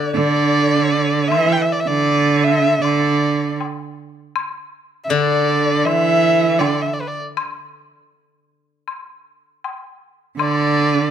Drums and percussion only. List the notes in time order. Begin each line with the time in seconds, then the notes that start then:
1.32 high woodblock
2.84 high woodblock
3.60 high woodblock, low woodblock
4.36 high woodblock
5.86 high woodblock
6.61 high woodblock, low woodblock
7.37 high woodblock
8.88 high woodblock
9.64 high woodblock, low woodblock
10.39 high woodblock